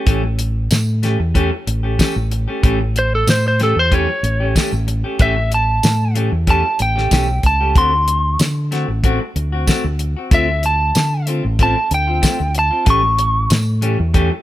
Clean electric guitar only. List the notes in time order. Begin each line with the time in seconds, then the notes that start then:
0.06 E3 A3 C#4 G4
0.24 muted clean electric guitar stroke
0.38 muted clean electric guitar stroke
0.71 muted clean electric guitar stroke
1.03 E3 A3 C#4 G4
1.20 muted clean electric guitar stroke
1.34 E3 A3 C#4 G4
1.52 muted clean electric guitar stroke
1.67 muted clean electric guitar stroke
1.83 A3 C#4 G4
1.98 E3 A3 C#4 G4
2.16 muted clean electric guitar stroke
2.31 muted clean electric guitar stroke
2.48 A3 C#4 G4
2.63 E3 A3 C#4 G4
2.80 muted clean electric guitar stroke
2.95 muted clean electric guitar stroke
3.28 muted clean electric guitar stroke
3.59 E3 A3 C#4 G4
3.77 muted clean electric guitar stroke
3.91 E3 A3 C#4 G4
4.09 muted clean electric guitar stroke
4.23 muted clean electric guitar stroke
4.40 A3 C#4 G4
4.55 E3 A3 C#4 G4
4.72 muted clean electric guitar stroke
4.87 muted clean electric guitar stroke
5.04 A3 C#4 G4
5.19 E3 A3 C#4 G4
5.36 muted clean electric guitar stroke
5.51 muted clean electric guitar stroke
5.83 muted clean electric guitar stroke
6.15 E3 A3 C#4 G4
6.32 muted clean electric guitar stroke
6.47 E3 A3 C#4 G4
6.64 muted clean electric guitar stroke
6.79 muted clean electric guitar stroke
6.96 A3 C#4 G4
7.11 E3 A3 C#4 G4
7.28 muted clean electric guitar stroke
7.44 muted clean electric guitar stroke
7.60 A3 C#4 G4
7.75 A3 C4 F#4
7.93 muted clean electric guitar stroke
8.08 muted clean electric guitar stroke
8.39 muted clean electric guitar stroke
8.71 A3 C4 F#4
8.89 muted clean electric guitar stroke
9.04 A3 C4 F#4
9.20 muted clean electric guitar stroke
9.36 muted clean electric guitar stroke
9.52 C4 F#4
9.67 A3 C4 F#4
9.85 muted clean electric guitar stroke
10.00 muted clean electric guitar stroke
10.17 C4 F#4
10.31 A3 C4 F4
10.48 muted clean electric guitar stroke
10.63 muted clean electric guitar stroke
10.95 muted clean electric guitar stroke
11.27 A3 C4 F4
11.44 muted clean electric guitar stroke
11.59 A3 C4 F4
11.76 muted clean electric guitar stroke
11.91 muted clean electric guitar stroke
12.08 C4 F4
12.22 A3 C4 F4
12.39 muted clean electric guitar stroke
12.55 muted clean electric guitar stroke
12.71 C4 F4
12.85 E3 A3 C#4 G4
13.03 muted clean electric guitar stroke
13.18 muted clean electric guitar stroke
13.50 muted clean electric guitar stroke
13.81 E3 A3 C#4 G4
13.99 muted clean electric guitar stroke
14.14 E3 A3 C#4 G4
14.31 muted clean electric guitar stroke